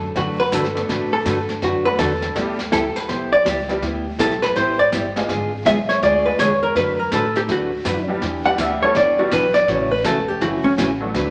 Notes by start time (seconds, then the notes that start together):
Already playing: F#2 A4
0.15 F#2 D3 F#3 A3 D4 F#4 B4, brush sweep, kick, snare
0.40 B4
0.52 G2 D3 F#3 A3 D4 F#4 A4 B4, kick, snare, hi-hat pedal
0.64 snare
0.75 A3 B3 D4 F#4 A4, snare
0.88 A2 D3 F#3 A3 D4 F#4 B4, brush sweep, kick, snare
1.13 A4
1.25 G2 D3 F#3 A3 D4 F#4 B4, kick, snare, hi-hat pedal
1.49 snare
1.62 F#2 D3 F#3 A3 D4 F#4 B4, brush sweep, kick, snare
1.85 A3 B3 D4 F#4 A4 B4
1.99 E2 D3 F#3 A3 D4 F#4 A4 B4, kick, snare, hi-hat pedal
2.22 snare
2.35 D2 G3 B3 D4 E4 G4, brush sweep, kick, snare
2.59 snare
2.72 C#2 G3 B3 E4 G4 A4, kick, snare, hi-hat pedal
2.96 B4, muted upright bass stroke, snare
3.08 B1 G3 B3 E4 G4 C5, brush sweep, kick, snare
3.33 D5
3.45 C#2 G3 B3 E4 G4, kick, snare, hi-hat pedal
3.69 G3 B3 D4 E4 G4, snare
3.82 D2 G3 B3 E4 G4, brush sweep, kick, snare
4.18 B1 G3 B3 E4 G4 A4, kick, snare, hi-hat pedal
4.31 snare
4.42 B4, snare
4.55 A1 G3 B3 E4 G4 C5, brush sweep, kick, snare
4.79 D5
4.92 G1 G3 B3 E4 G4, kick, snare, hi-hat pedal
5.16 G#3 B3 D4 F4 G#4, snare
5.29 G#1 D3 G#3 B3 F4 G#4, brush sweep, kick, snare
5.65 B1 D3 G#3 B3 F4 G#4 E5, kick, snare, hi-hat pedal
5.89 C#5, snare
6.02 D2 D3 G#3 B3 F4 G#4 D5, brush sweep, kick, snare
6.26 G#3 B3 D4 F4 G#4 B4
6.39 E2 D3 G#3 B3 F4 G#4 C#5, kick, snare, hi-hat pedal
6.63 A#4
6.75 F#2 D3 F#3 A3 D4 F#4 B4, brush sweep, kick, snare
6.99 A#4
7.12 A2 D3 F#3 A3 D4 F#4 A4 B4, kick, snare, hi-hat pedal
7.36 G4, snare
7.48 D2 D3 F#3 A3 D4 F#4 B4, brush sweep, kick, snare
7.85 F#2 D3 F#3 A3 D4 F#4 B4, kick, snare, hi-hat pedal
8.08 G3 B3 D4 E4 G4
8.21 E2 E3 B3 D4 G4, brush sweep, kick, snare
8.45 G3 B3 D4 E4 G4 F#5
8.58 D2 E3 B3 D4 G4 E5, kick, snare, hi-hat pedal
8.82 G3 B3 D4 E4 A4 C#5
8.95 C#2 E3 B3 D4 G4 D5, brush sweep, kick, snare
9.19 G3 B3 D4 E4 F#4 G4
9.31 B1 E3 B3 D4 G4 B4, kick, snare, hi-hat pedal
9.54 D5, snare
9.68 A1 C#3 E3 A3 C#4 F#4 C#5, brush sweep, kick, snare
9.91 B4
10.04 E1 C#3 E3 A3 C#4 F#4 A4, kick, snare, hi-hat pedal
10.28 G4
10.40 F#1 C#3 E3 A3 C#4 F#4, brush sweep, kick, snare
10.64 C#4
10.77 A1 C#3 E3 A3 C#4 F#4, kick, snare, hi-hat pedal
11.01 F#3 A3 B3 D4 F#4
11.14 D2 D3 F#3 A3 D4 F#4 B4, brush sweep, kick, snare